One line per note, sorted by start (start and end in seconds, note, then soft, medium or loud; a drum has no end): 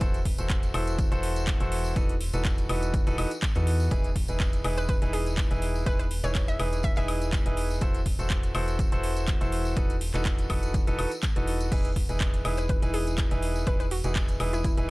0.01 0.36 E1 medium
0.01 0.17 E3 medium
0.01 0.17 E4 medium
0.01 0.17 F#4 medium
0.01 0.17 A4 medium
0.01 0.17 C5 loud
0.01 kick loud
0.01 closed hi-hat medium
0.01 tambourine medium
0.14 closed hi-hat medium
0.14 tambourine soft
0.25 kick medium
0.25 open hi-hat loud
0.38 0.72 E1 medium
0.38 0.72 E3 medium
0.38 0.72 E4 medium
0.38 0.72 F#4 medium
0.38 0.72 A4 medium
0.38 0.72 C5 medium
0.38 closed hi-hat soft
0.38 tambourine medium
0.50 kick loud
0.50 clap loud
0.50 closed hi-hat medium
0.50 tambourine medium
0.63 closed hi-hat medium
0.63 tambourine soft
0.74 1.09 E1 loud
0.74 1.09 E3 medium
0.74 1.09 E4 medium
0.74 1.08 F#4 medium
0.74 1.09 A4 medium
0.74 1.09 C5 medium
0.74 open hi-hat loud
0.74 high woodblock medium
0.87 closed hi-hat soft
0.87 tambourine medium
0.98 kick loud
0.98 closed hi-hat medium
0.98 tambourine medium
1.12 1.58 E1 loud
1.12 1.57 E3 loud
1.12 1.57 E4 medium
1.12 1.57 F#4 medium
1.12 1.57 A4 medium
1.12 1.57 C5 loud
1.12 closed hi-hat medium
1.12 tambourine soft
1.23 open hi-hat loud
1.36 closed hi-hat soft
1.36 tambourine medium
1.47 kick loud
1.47 clap loud
1.47 closed hi-hat medium
1.47 tambourine medium
1.60 1.94 E1 loud
1.60 1.93 E3 medium
1.60 1.93 E4 medium
1.60 1.93 F#4 medium
1.60 1.93 A4 medium
1.60 1.93 C5 loud
1.60 closed hi-hat medium
1.60 tambourine soft
1.72 open hi-hat loud
1.84 tambourine medium
1.96 2.31 E1 medium
1.96 2.13 E3 medium
1.96 2.13 D#4 medium
1.96 2.13 F#4 medium
1.96 2.13 A4 medium
1.96 2.13 B4 loud
1.96 kick loud
1.96 closed hi-hat medium
1.96 tambourine medium
2.09 closed hi-hat soft
2.09 tambourine soft
2.21 open hi-hat loud
2.33 2.67 E1 loud
2.33 2.67 E3 medium
2.33 2.67 D#4 medium
2.33 2.67 F#4 medium
2.33 2.67 A4 medium
2.33 2.67 B4 medium
2.33 closed hi-hat soft
2.33 tambourine medium
2.45 kick loud
2.45 clap loud
2.45 closed hi-hat medium
2.45 tambourine medium
2.58 closed hi-hat medium
2.58 tambourine soft
2.69 3.04 E1 loud
2.69 3.04 E3 medium
2.69 3.04 D#4 medium
2.69 3.04 F#4 medium
2.69 3.04 A4 medium
2.69 3.04 B4 medium
2.69 open hi-hat loud
2.69 high woodblock medium
2.83 closed hi-hat soft
2.83 tambourine medium
2.94 kick loud
2.94 closed hi-hat medium
2.94 tambourine medium
3.07 3.16 E1 loud
3.07 3.16 E3 loud
3.07 3.16 D#4 medium
3.07 3.16 F#4 medium
3.07 3.16 A4 medium
3.07 3.16 B4 loud
3.07 closed hi-hat soft
3.07 tambourine soft
3.18 3.26 E1 loud
3.18 3.29 E3 medium
3.18 3.29 D#4 medium
3.18 3.29 F#4 medium
3.18 3.29 A4 medium
3.18 3.29 B4 medium
3.18 open hi-hat loud
3.18 high woodblock medium
3.31 closed hi-hat soft
3.31 tambourine medium
3.42 kick loud
3.42 clap loud
3.42 closed hi-hat medium
3.42 tambourine medium
3.55 3.89 E2 loud
3.55 3.89 E3 medium
3.55 3.89 D#4 medium
3.55 3.89 F#4 medium
3.55 3.89 A4 medium
3.55 3.89 B4 loud
3.55 closed hi-hat medium
3.55 tambourine soft
3.67 open hi-hat loud
3.80 tambourine medium
3.91 4.26 E1 loud
3.91 4.08 E3 loud
3.91 4.08 D#4 medium
3.91 4.08 E4 medium
3.91 4.08 G#4 medium
3.91 4.08 B4 loud
3.91 kick loud
3.91 closed hi-hat medium
3.91 tambourine medium
4.04 closed hi-hat soft
4.04 tambourine soft
4.16 kick medium
4.16 open hi-hat loud
4.28 4.62 E1 loud
4.28 4.62 E3 medium
4.28 4.62 D#4 medium
4.28 4.62 E4 medium
4.28 4.62 G#4 medium
4.28 4.62 B4 medium
4.28 closed hi-hat soft
4.28 tambourine medium
4.40 kick loud
4.40 clap loud
4.40 closed hi-hat medium
4.40 tambourine medium
4.53 closed hi-hat medium
4.53 tambourine soft
4.64 4.99 E1 loud
4.64 4.99 E3 medium
4.64 4.99 D#4 medium
4.64 4.99 E4 medium
4.64 4.99 G#4 medium
4.64 4.99 B4 loud
4.64 open hi-hat medium
4.64 high woodblock medium
4.77 4.85 B4 medium
4.77 closed hi-hat soft
4.77 tambourine medium
4.88 4.97 B4 medium
4.88 kick loud
4.88 closed hi-hat medium
4.88 tambourine medium
5.02 5.48 E1 loud
5.02 5.48 E3 loud
5.02 5.48 D#4 medium
5.02 5.48 E4 medium
5.02 5.48 G#4 medium
5.02 5.48 B4 loud
5.02 closed hi-hat medium
5.02 tambourine soft
5.13 5.33 G#4 medium
5.13 open hi-hat loud
5.26 closed hi-hat soft
5.26 tambourine medium
5.38 kick loud
5.38 clap loud
5.38 closed hi-hat medium
5.38 tambourine medium
5.51 5.84 E1 loud
5.51 5.84 E3 medium
5.51 5.84 D#4 medium
5.51 5.84 E4 medium
5.51 5.84 G#4 medium
5.51 5.84 B4 loud
5.51 closed hi-hat medium
5.51 tambourine soft
5.62 open hi-hat medium
5.75 tambourine medium
5.86 6.21 E1 loud
5.86 6.03 E3 loud
5.86 6.03 D#4 medium
5.86 6.03 E4 medium
5.86 6.03 G#4 medium
5.86 5.95 B4 medium
5.86 6.03 B4 loud
5.86 kick loud
5.86 closed hi-hat medium
5.86 tambourine medium
5.99 6.07 B4 medium
5.99 closed hi-hat medium
5.99 tambourine soft
6.11 open hi-hat loud
6.24 6.57 E1 medium
6.24 6.57 E3 medium
6.24 6.57 D#4 medium
6.24 6.57 E4 medium
6.24 6.57 G#4 medium
6.24 6.57 B4 medium
6.24 6.46 C#5 medium
6.24 closed hi-hat soft
6.24 tambourine medium
6.35 kick loud
6.35 clap loud
6.35 closed hi-hat medium
6.35 tambourine medium
6.48 6.67 E5 medium
6.48 closed hi-hat medium
6.48 tambourine soft
6.60 6.94 E1 loud
6.60 6.94 E3 medium
6.60 6.94 D#4 medium
6.60 6.94 E4 medium
6.60 6.94 G#4 medium
6.60 6.94 B4 loud
6.60 open hi-hat medium
6.60 high woodblock medium
6.73 closed hi-hat soft
6.73 tambourine medium
6.83 6.92 E5 medium
6.83 kick loud
6.83 closed hi-hat medium
6.83 tambourine medium
6.96 7.43 E1 medium
6.96 7.43 E3 loud
6.96 7.43 D#4 medium
6.96 7.43 E4 medium
6.96 7.43 G#4 medium
6.96 7.43 B4 loud
6.96 7.04 E5 medium
6.96 closed hi-hat medium
6.96 tambourine soft
7.08 open hi-hat loud
7.08 high woodblock medium
7.21 closed hi-hat soft
7.21 tambourine medium
7.32 kick loud
7.32 clap loud
7.32 closed hi-hat medium
7.32 tambourine medium
7.46 7.79 E1 loud
7.46 7.79 E3 loud
7.46 7.79 D#4 medium
7.46 7.79 E4 medium
7.46 7.79 G#4 medium
7.46 7.79 B4 loud
7.46 closed hi-hat medium
7.46 tambourine soft
7.57 open hi-hat medium
7.70 tambourine medium
7.81 8.16 E1 loud
7.81 7.98 E3 loud
7.81 7.98 E4 medium
7.81 7.98 F#4 medium
7.81 7.98 A4 medium
7.81 7.98 C5 loud
7.81 kick loud
7.81 closed hi-hat medium
7.81 tambourine medium
7.95 closed hi-hat medium
7.95 tambourine soft
8.06 kick medium
8.06 open hi-hat loud
8.19 8.52 E1 loud
8.19 8.52 E3 medium
8.19 8.52 E4 medium
8.19 8.52 F#4 medium
8.19 8.52 A4 medium
8.19 8.52 C5 medium
8.19 closed hi-hat soft
8.19 tambourine medium
8.30 kick loud
8.30 clap loud
8.30 closed hi-hat medium
8.30 tambourine medium
8.43 closed hi-hat medium
8.43 tambourine soft
8.55 8.90 E1 loud
8.55 8.89 E3 medium
8.55 8.89 E4 medium
8.55 8.89 F#4 medium
8.55 8.89 A4 medium
8.55 8.89 C5 loud
8.55 open hi-hat medium
8.55 high woodblock medium
8.68 closed hi-hat soft
8.68 tambourine medium
8.79 kick loud
8.79 closed hi-hat medium
8.79 tambourine medium
8.92 9.38 E1 medium
8.92 9.38 E3 loud
8.92 9.38 E4 medium
8.92 9.38 F#4 medium
8.92 9.38 A4 medium
8.92 9.38 C5 loud
8.92 closed hi-hat medium
8.92 tambourine soft
9.03 open hi-hat loud
9.16 closed hi-hat soft
9.16 tambourine medium
9.27 kick loud
9.27 clap loud
9.27 closed hi-hat medium
9.27 tambourine medium
9.41 9.74 E1 loud
9.41 9.74 E3 medium
9.41 9.74 E4 medium
9.41 9.74 F#4 medium
9.41 9.74 A4 medium
9.41 9.74 C5 loud
9.41 closed hi-hat medium
9.41 tambourine soft
9.52 open hi-hat medium
9.65 tambourine medium
9.76 10.11 E1 medium
9.76 9.93 E3 loud
9.76 9.93 D#4 medium
9.76 9.93 F#4 medium
9.76 9.93 A4 medium
9.76 9.93 B4 loud
9.76 kick loud
9.76 closed hi-hat medium
9.76 tambourine medium
9.90 closed hi-hat medium
9.90 tambourine soft
10.01 open hi-hat loud
10.14 10.48 E1 loud
10.14 10.47 E3 medium
10.14 10.47 D#4 medium
10.14 10.47 F#4 medium
10.14 10.47 A4 medium
10.14 10.47 B4 medium
10.14 clap soft
10.14 closed hi-hat soft
10.14 tambourine medium
10.25 kick loud
10.25 clap loud
10.25 closed hi-hat medium
10.25 tambourine medium
10.38 closed hi-hat medium
10.38 tambourine soft
10.50 10.85 E1 loud
10.50 10.84 E3 medium
10.50 10.84 D#4 medium
10.50 10.84 F#4 medium
10.50 10.84 A4 medium
10.50 10.84 B4 loud
10.50 kick medium
10.50 open hi-hat medium
10.50 high woodblock medium
10.63 closed hi-hat soft
10.63 tambourine medium
10.74 kick loud
10.74 closed hi-hat medium
10.74 tambourine medium
10.87 10.96 E1 loud
10.87 10.96 E3 loud
10.87 10.96 D#4 medium
10.87 10.96 F#4 medium
10.87 10.96 A4 medium
10.87 10.96 B4 loud
10.87 closed hi-hat medium
10.87 tambourine soft
10.99 11.07 E1 loud
10.99 11.09 E3 medium
10.99 11.09 D#4 medium
10.99 11.09 F#4 medium
10.99 11.09 A4 medium
10.99 11.09 B4 medium
10.99 open hi-hat loud
10.99 high woodblock medium
11.11 closed hi-hat soft
11.11 tambourine medium
11.23 kick loud
11.23 clap loud
11.23 closed hi-hat medium
11.23 tambourine medium
11.36 11.69 E1 loud
11.36 11.69 E3 medium
11.36 11.69 D#4 medium
11.36 11.69 F#4 medium
11.36 11.69 A4 medium
11.36 11.69 B4 loud
11.36 closed hi-hat medium
11.36 tambourine soft
11.47 open hi-hat medium
11.60 closed hi-hat soft
11.60 tambourine medium
11.72 12.07 E1 medium
11.72 11.88 E3 loud
11.72 11.88 D#4 medium
11.72 11.88 E4 medium
11.72 11.88 G#4 medium
11.72 11.88 B4 loud
11.72 kick loud
11.72 closed hi-hat medium
11.72 tambourine medium
11.72 crash medium
11.84 closed hi-hat medium
11.84 tambourine soft
11.96 kick medium
11.96 open hi-hat loud
12.09 12.43 E1 loud
12.09 12.42 E3 medium
12.09 12.42 D#4 medium
12.09 12.42 E4 medium
12.09 12.42 G#4 medium
12.09 12.42 B4 medium
12.09 closed hi-hat soft
12.09 tambourine medium
12.21 kick loud
12.21 clap loud
12.21 closed hi-hat medium
12.21 tambourine medium
12.34 closed hi-hat medium
12.34 tambourine soft
12.45 12.80 E1 loud
12.45 12.79 E3 medium
12.45 12.79 D#4 medium
12.45 12.79 E4 medium
12.45 12.79 G#4 medium
12.45 12.79 B4 loud
12.45 open hi-hat medium
12.45 high woodblock medium
12.57 12.65 B4 medium
12.57 closed hi-hat soft
12.57 tambourine medium
12.69 12.78 B4 medium
12.69 kick loud
12.69 closed hi-hat medium
12.69 tambourine medium
12.82 13.29 E1 loud
12.82 13.28 E3 loud
12.82 13.28 D#4 medium
12.82 13.28 E4 medium
12.82 13.28 G#4 medium
12.82 13.28 B4 loud
12.82 closed hi-hat medium
12.82 tambourine soft
12.94 13.14 G#4 loud
12.94 open hi-hat loud
13.07 closed hi-hat soft
13.07 tambourine medium
13.18 kick loud
13.18 clap loud
13.18 closed hi-hat medium
13.18 tambourine medium
13.31 13.65 E1 loud
13.31 13.64 E3 medium
13.31 13.64 D#4 medium
13.31 13.64 E4 medium
13.31 13.64 G#4 medium
13.31 13.64 B4 loud
13.31 closed hi-hat medium
13.31 tambourine soft
13.42 open hi-hat loud
13.55 tambourine medium
13.67 14.02 E1 medium
13.67 13.83 E3 loud
13.67 13.83 D#4 medium
13.67 13.83 E4 medium
13.67 13.83 G#4 medium
13.67 13.83 B4 loud
13.67 13.75 B4 medium
13.67 kick loud
13.67 closed hi-hat medium
13.67 tambourine medium
13.80 13.87 B4 medium
13.80 closed hi-hat medium
13.80 tambourine soft
13.91 14.00 F#4 medium
13.91 open hi-hat loud
14.04 14.38 E1 loud
14.04 14.37 E3 medium
14.04 14.37 D#4 medium
14.04 14.37 E4 medium
14.04 14.12 F#4 medium
14.04 14.37 G#4 medium
14.04 14.37 B4 medium
14.04 closed hi-hat soft
14.04 tambourine medium
14.16 kick loud
14.16 clap loud
14.16 closed hi-hat medium
14.16 tambourine medium
14.28 closed hi-hat medium
14.28 tambourine soft
14.40 14.75 E1 loud
14.40 14.74 E3 medium
14.40 14.74 D#4 medium
14.40 14.74 E4 medium
14.40 14.74 G#4 medium
14.40 14.74 B4 loud
14.40 open hi-hat loud
14.40 high woodblock medium
14.53 14.60 E4 medium
14.53 closed hi-hat soft
14.53 tambourine medium
14.64 14.73 E4 medium
14.64 kick loud
14.64 closed hi-hat medium
14.64 tambourine medium
14.77 14.90 E1 loud
14.77 14.90 E3 loud
14.77 14.90 D#4 medium
14.77 14.90 E4 medium
14.77 14.90 G#4 medium
14.77 14.90 B4 loud
14.77 closed hi-hat medium
14.77 tambourine soft